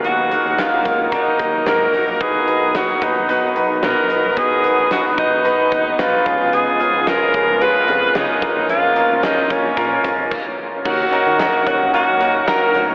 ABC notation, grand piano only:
X:1
M:4/4
L:1/8
Q:1/4=111
K:Ebm
V:1 name="Grand piano"
[B,EGB] [B,EGB] [B,EGB] [B,EGB] [B,EGB] [B,EGB] [B,EGB] [B,EGB] | [=B,^D^F=B] [B,DFB] [B,DFB] [B,DFB] [B,DFB] [B,DFB] [B,DFB] [B,DFB] | [=B,^D^F=B] [B,DFB] [B,DFB] [B,DFB] [B,DFB] [B,DFB] [B,DFB] [C_D=FA]- | [CDFA] [CDFA] [CDFA] [CDFA] [CDFA] [CDFA] [CDFA] [B,DFB]- |
[B,DFB] [B,DFB] [B,DFB] [B,DFB] [B,DFB] [B,DFB] z2 | [DEGB] [DEGB] [DEGB] [DEGB] [DEGB] [DEGB] [DEGB] [DEGB] |]
V:2 name="Grand piano" clef=bass
E,2 z6 | =B,,3 z4 z | =B,,3 z4 D,- | D,2 z4 z B,,- |
B,,2 z6 | E,3 z4 z |]